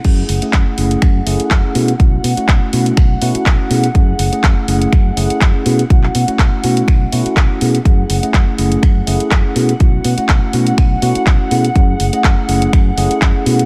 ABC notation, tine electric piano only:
X:1
M:4/4
L:1/16
Q:"Swing 16ths" 1/4=123
K:F#m
V:1 name="Tine electric piano"
[A,CEG]3 [A,CEG]3 [A,CEG]4 [A,CEG]4 [A,CEG] z | [A,CEF]3 [A,CEF]3 [A,CEF]4 [A,CEF]4 [A,CEG] z | [A,CEG]3 [A,CEG]3 [A,CEG]4 [A,CEG]4 [A,CEG] z | [A,CEF]3 [A,CEF]3 [A,CEF]4 [A,CEF]4 [A,CEG] z |
[A,CEG]3 [A,CEG]3 [A,CEG]4 [A,CEG]4 [A,CEG] z | [A,CEF]3 [A,CEF]3 [A,CEF]4 [A,CEF]4 [A,CEG] z | [A,CEG]3 [A,CEG]3 [A,CEG]4 [A,CEG]4 [A,CEG] z |]